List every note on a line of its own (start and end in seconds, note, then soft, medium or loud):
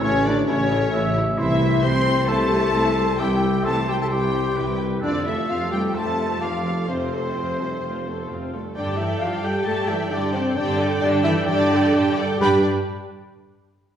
0.00 0.42 A1 medium
0.00 0.25 C#3 medium
0.00 2.24 A3 medium
0.00 0.11 A3 medium
0.00 1.21 E4 medium
0.00 0.11 E4 medium
0.00 0.65 C#5 medium
0.00 0.26 C#5 medium
0.00 0.25 C#5 medium
0.04 0.29 C#4 loud
0.25 0.34 D3 medium
0.25 0.34 A3 medium
0.25 0.47 D4 medium
0.25 0.35 E4 medium
0.25 0.46 D5 medium
0.25 0.47 D5 medium
0.25 0.33 D5 medium
0.47 0.87 A1 medium
0.47 0.88 A1 medium
0.47 1.15 C#3 medium
0.47 0.56 A3 medium
0.47 1.14 C#4 medium
0.47 0.56 E4 medium
0.47 1.13 C#5 medium
0.47 1.14 C#5 medium
0.47 1.15 C#5 medium
0.70 0.79 A3 medium
0.70 0.78 E4 medium
0.92 1.32 A1 medium
0.92 1.33 A1 medium
0.92 1.01 A3 medium
0.92 1.01 E4 medium
0.92 1.40 E5 medium
1.15 1.23 A3 medium
1.15 1.23 E4 medium
1.37 1.71 C2 medium
1.37 1.78 C2 medium
1.37 1.59 E3 medium
1.37 1.80 E3 medium
1.37 1.85 E4 medium
1.37 1.59 E4 medium
1.37 4.99 E4 medium
1.37 2.74 C5 medium
1.37 1.80 E5 medium
1.37 1.81 E5 medium
1.62 1.84 G3 medium
1.62 1.84 G4 medium
1.81 2.23 C2 medium
1.81 2.06 E3 medium
1.81 2.28 C4 medium
1.81 2.07 E4 medium
1.81 2.27 C5 loud
1.81 2.29 C6 medium
1.81 2.28 C6 medium
1.86 2.30 C6 medium
2.07 2.29 G3 medium
2.07 2.29 G4 medium
2.27 2.69 C2 medium
2.27 2.50 E3 medium
2.27 5.03 G3 medium
2.27 3.20 A3 medium
2.27 2.50 E4 medium
2.27 3.21 A4 loud
2.27 3.17 A5 medium
2.27 3.19 A5 medium
2.51 2.74 G3 medium
2.51 2.74 G4 medium
2.73 3.14 C2 medium
2.73 3.15 C2 medium
2.73 2.97 E3 medium
2.73 2.97 E4 medium
2.73 3.22 C5 medium
2.97 3.20 G3 medium
2.97 3.20 G4 medium
3.19 3.60 C2 medium
3.19 3.41 E3 medium
3.19 3.65 G3 medium
3.19 3.41 E4 medium
3.19 3.64 G4 medium
3.19 3.65 E5 medium
3.19 3.64 G5 medium
3.19 3.67 G5 medium
3.19 3.66 G5 medium
3.43 3.66 G3 soft
3.43 3.66 G4 soft
3.63 4.06 C2 medium
3.63 3.88 E3 medium
3.63 3.88 A3 medium
3.63 3.88 E4 medium
3.63 3.75 A4 medium
3.63 4.58 C5 medium
3.63 3.90 A5 medium
3.63 3.88 A5 medium
3.63 3.74 A5 medium
3.88 4.00 G3 medium
3.88 4.11 G3 soft
3.88 3.94 G4 medium
3.88 4.11 G4 soft
3.88 4.00 G5 medium
3.88 4.02 G5 medium
3.88 3.95 G5 medium
4.00 4.11 A3 medium
4.00 4.11 A4 medium
4.00 4.12 A5 medium
4.00 4.05 A5 medium
4.00 4.06 A5 medium
4.11 4.51 C2 medium
4.11 4.52 C2 medium
4.11 4.33 E3 soft
4.11 4.80 G3 medium
4.11 4.33 E4 soft
4.11 4.78 G4 medium
4.11 4.79 G5 medium
4.11 4.78 G5 medium
4.11 4.80 G5 medium
4.36 4.58 G3 soft
4.36 4.58 G4 soft
4.56 4.97 C2 medium
4.56 4.98 C2 medium
4.56 4.80 E3 soft
4.56 4.80 E4 medium
4.56 5.00 B4 medium
4.82 5.04 G3 soft
4.82 5.04 G4 soft
5.01 5.43 F1 medium
5.01 5.43 F2 medium
5.01 5.24 D3 medium
5.01 7.30 A3 medium
5.01 5.24 C4 soft
5.01 5.13 D4 medium
5.01 7.30 F4 medium
5.01 5.25 F4 soft
5.01 5.96 A4 medium
5.01 5.23 D5 medium
5.01 5.24 D5 medium
5.01 5.25 D5 medium
5.26 5.49 E3 medium
5.26 5.49 A3 soft
5.26 5.36 E4 medium
5.26 5.50 A4 soft
5.26 5.48 E5 medium
5.48 5.89 F1 medium
5.48 5.89 F2 medium
5.48 5.71 F3 medium
5.48 5.72 C4 soft
5.48 5.73 F4 medium
5.48 5.72 F4 soft
5.48 5.71 F5 medium
5.48 5.72 F5 medium
5.72 5.94 G3 medium
5.72 5.95 A3 soft
5.72 5.94 G4 medium
5.72 5.95 A4 soft
5.72 5.96 G5 medium
5.72 5.95 G5 medium
5.72 5.81 G5 medium
5.95 6.35 F1 medium
5.95 6.35 F2 medium
5.95 6.41 A3 medium
5.95 6.17 C4 soft
5.95 6.17 F4 soft
5.95 6.40 A4 medium
5.95 6.40 C5 medium
5.95 6.41 A5 medium
5.95 6.40 A5 medium
5.95 6.42 A5 medium
6.20 6.42 A3 soft
6.20 6.42 A4 soft
6.40 6.82 F1 soft
6.40 6.83 F2 soft
6.40 6.88 F3 medium
6.40 6.65 C4 soft
6.40 6.89 F4 medium
6.40 6.65 F4 soft
6.40 6.86 D5 soft
6.40 6.89 F5 soft
6.40 6.88 F5 medium
6.40 6.89 F5 medium
6.68 6.89 A3 soft
6.68 6.89 A4 soft
6.88 7.29 F1 soft
6.88 7.29 F2 soft
6.88 8.29 C3 soft
6.88 8.29 C4 medium
6.88 7.10 C4 soft
6.88 7.11 F4 soft
6.88 8.28 C5 soft
6.88 8.28 C5 medium
6.88 8.49 C5 soft
6.88 8.29 C5 soft
7.13 7.35 A3 soft
7.13 7.35 A4 soft
7.34 7.76 F1 soft
7.34 7.77 F2 soft
7.34 7.56 F3 soft
7.34 7.59 C4 soft
7.34 7.59 F4 soft
7.59 7.82 G3 soft
7.59 7.82 A3 soft
7.59 7.82 A4 soft
7.82 8.23 F1 soft
7.82 8.23 F2 soft
7.82 8.05 A3 medium
7.82 8.04 C4 soft
7.82 8.04 F4 soft
8.05 8.30 A3 soft
8.05 8.28 B3 soft
8.05 8.30 A4 soft
8.28 8.69 F1 soft
8.28 8.70 F2 soft
8.28 8.52 C4 medium
8.28 8.53 C4 soft
8.28 8.53 F4 soft
8.52 8.75 G3 soft
8.52 8.76 A3 soft
8.52 8.76 A4 soft
8.75 9.15 G2 medium
8.75 8.96 D3 medium
8.75 8.96 D4 medium
8.75 8.97 G4 soft
8.75 8.98 D5 medium
8.75 8.97 D5 medium
8.75 8.97 D5 soft
8.75 9.62 G5 medium
8.75 8.96 G5 soft
8.75 9.62 A5 medium
8.96 9.20 E3 medium
8.96 9.19 E4 medium
8.96 9.21 A4 soft
8.96 9.20 D5 soft
8.96 9.21 E5 medium
8.96 9.21 G5 soft
9.19 9.61 G2 medium
9.19 9.43 F3 medium
9.19 9.43 F4 medium
9.19 9.45 G4 soft
9.19 9.45 D5 soft
9.19 9.43 F5 medium
9.19 9.43 G5 soft
9.40 9.66 G3 medium
9.40 9.64 G4 medium
9.40 9.66 D5 soft
9.40 9.66 G5 medium
9.40 9.65 G5 medium
9.45 9.67 A4 soft
9.45 9.67 G5 soft
9.64 10.06 G2 medium
9.64 9.89 A3 medium
9.64 9.88 G4 medium
9.64 9.89 A4 loud
9.64 9.88 D5 soft
9.64 9.86 G5 soft
9.64 10.10 G5 medium
9.64 9.88 A5 medium
9.64 9.90 A5 medium
9.64 10.10 A5 medium
9.87 10.11 E3 medium
9.87 10.11 E4 medium
9.87 10.12 A4 soft
9.87 10.11 D5 soft
9.87 10.10 E5 medium
9.87 10.11 E5 medium
9.87 10.12 G5 soft
10.10 10.51 G2 medium
10.10 10.34 D3 medium
10.10 10.33 D4 medium
10.10 10.34 G4 soft
10.10 10.33 D5 medium
10.10 10.35 D5 medium
10.10 10.36 D5 medium
10.10 10.34 G5 medium
10.10 10.56 G5 medium
10.10 10.56 A5 medium
10.33 10.57 C3 medium
10.33 10.56 C4 medium
10.33 10.57 A4 medium
10.33 10.41 C5 medium
10.33 10.59 C5 medium
10.33 10.57 D5 medium
10.33 10.57 G5 medium
10.54 10.97 G2 medium
10.54 11.02 D3 medium
10.54 10.88 D4 medium
10.54 10.99 D5 medium
10.54 11.00 D5 medium
10.54 10.78 G5 medium
10.54 11.02 G5 medium
10.54 11.00 A5 medium
10.58 10.79 G4 medium
10.58 10.79 D5 medium
10.79 11.02 A4 medium
10.79 11.03 D5 medium
10.79 11.02 G5 medium
11.00 11.42 G2 medium
11.00 11.25 D3 medium
11.00 11.24 D4 loud
11.00 11.25 G4 medium
11.00 11.08 D5 medium
11.00 11.11 D5 medium
11.00 11.25 D5 medium
11.00 11.46 G5 medium
11.00 11.26 G5 medium
11.00 11.46 A5 medium
11.23 11.48 E3 medium
11.23 11.34 E4 loud
11.23 11.48 A4 medium
11.23 11.48 D5 medium
11.23 11.46 E5 medium
11.23 11.33 E5 medium
11.23 11.48 G5 medium
11.45 11.88 G2 loud
11.45 12.16 D3 medium
11.45 12.14 D4 loud
11.45 11.69 G4 medium
11.45 12.15 D5 loud
11.45 11.69 D5 medium
11.45 12.16 D5 medium
11.45 12.15 G5 medium
11.45 11.69 G5 medium
11.45 12.15 A5 medium
11.71 11.94 A4 medium
11.71 11.94 D5 medium
11.71 11.94 G5 medium
11.94 12.35 G2 medium
11.94 12.17 G4 medium
11.94 12.17 D5 medium
11.94 12.18 G5 medium
12.18 12.41 A4 medium
12.18 12.39 D5 medium
12.18 12.41 G5 medium
12.37 12.66 G2 medium
12.37 12.57 G4 medium
12.37 12.59 G4 loud
12.37 12.66 B4 medium
12.37 12.66 D5 medium
12.37 12.66 B5 medium
12.41 12.66 G3 medium
12.41 12.66 D4 medium
12.41 12.60 G5 medium
12.41 12.67 G5 medium